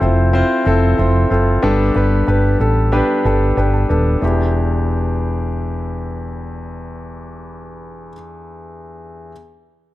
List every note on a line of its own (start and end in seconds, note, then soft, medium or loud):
0.00 0.41 F1 medium
0.00 0.33 C4 medium
0.00 0.34 E4 medium
0.00 0.02 F4 medium
0.00 0.31 F4 medium
0.00 0.67 A4 medium
0.00 0.02 C5 medium
0.00 0.31 C5 medium
0.33 0.63 C4 medium
0.33 0.63 E4 medium
0.33 0.63 F4 medium
0.33 0.64 C5 loud
0.66 0.93 F1 medium
0.66 0.95 C4 medium
0.66 0.95 E4 medium
0.66 0.96 F4 medium
0.66 0.96 A4 medium
0.98 1.25 F1 medium
0.98 1.27 C4 medium
0.98 1.28 E4 medium
0.98 1.28 F4 medium
0.98 1.28 C5 medium
1.30 1.57 F#1 medium
1.30 1.60 C4 medium
1.30 1.60 E4 medium
1.30 1.60 F4 medium
1.30 1.60 A4 medium
1.62 1.90 G1 medium
1.62 2.56 G2 medium
1.62 1.92 B3 medium
1.62 1.92 D4 medium
1.62 1.92 G4 medium
1.62 1.93 A4 loud
1.95 2.22 G1 medium
1.95 2.24 B3 medium
1.95 2.24 D4 medium
1.95 2.25 G4 medium
1.95 2.25 B4 medium
2.27 2.54 G1 medium
2.27 2.57 B3 medium
2.27 2.57 D4 medium
2.27 2.57 G4 medium
2.27 2.57 B4 medium
2.59 3.00 A1 medium
2.59 2.89 B3 medium
2.59 2.89 D4 medium
2.59 2.90 G4 medium
2.59 2.90 A4 medium
2.92 3.21 B3 medium
2.92 3.22 D4 medium
2.92 3.22 G4 medium
2.92 3.22 B4 medium
3.25 3.51 G1 medium
3.25 3.54 B3 medium
3.25 3.54 D4 medium
3.25 3.55 G4 medium
3.25 3.55 A4 medium
3.25 3.56 D5 medium
3.57 3.84 G1 medium
3.57 3.86 B3 medium
3.57 3.86 D4 medium
3.57 3.87 G4 medium
3.57 3.87 B4 medium
3.57 3.72 G5 medium
3.73 4.19 A5 medium
3.89 4.16 D#1 medium
3.89 4.18 B3 medium
3.89 4.19 D4 medium
3.89 4.19 G4 medium
3.89 4.19 A4 medium
4.20 8.11 E1 medium
4.20 8.11 E2 medium
4.20 8.09 B3 medium
4.20 8.11 D4 medium
4.20 8.12 E4 medium
4.25 8.14 G4 medium